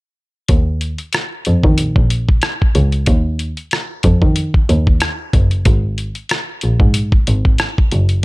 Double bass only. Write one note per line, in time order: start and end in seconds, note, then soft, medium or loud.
0.50 0.89 D#2 medium
1.47 1.61 F2 medium
1.64 1.75 D#3 medium
1.79 1.92 A#1 soft
1.96 2.22 A#1 medium
2.76 3.01 C#2 medium
3.08 3.47 D#2 medium
4.05 4.19 F2 medium
4.22 4.33 D#3 medium
4.69 4.94 D#2 medium
5.34 5.59 F#1 medium
5.66 6.05 G#1 medium
6.64 6.77 A#1 medium
6.80 6.92 G#2 medium
7.28 7.53 G#1 medium
7.93 8.23 F#1 medium